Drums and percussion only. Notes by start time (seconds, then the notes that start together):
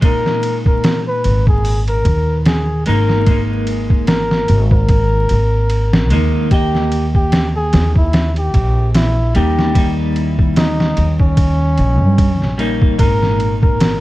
0.02 kick, ride
0.26 snare
0.43 ride
0.66 kick
0.84 snare, ride
1.24 ride
1.47 kick
1.65 open hi-hat
1.88 ride
2.05 kick, ride
2.46 snare, ride
2.86 ride
3.09 snare
3.26 kick, ride
3.67 ride
3.90 kick
4.07 snare, ride
4.31 snare
4.48 ride
4.71 kick
4.89 kick, ride
5.29 ride
5.70 ride
5.93 snare
6.10 ride
6.51 kick, ride
6.75 snare
6.92 ride
7.15 kick
7.32 snare, ride
7.73 snare, ride
7.96 kick
8.13 snare, ride
8.36 ride
8.54 kick, ride
8.94 snare, ride
9.35 ride
9.59 snare
9.75 kick, ride
10.16 ride
10.39 kick
10.56 snare, ride
10.80 snare
10.97 ride
11.20 kick
11.37 kick, ride
11.78 ride
12.18 kick, ride
12.42 snare
12.59 ride
12.82 kick
12.99 kick, ride
13.23 snare
13.40 ride
13.63 kick
13.80 snare, ride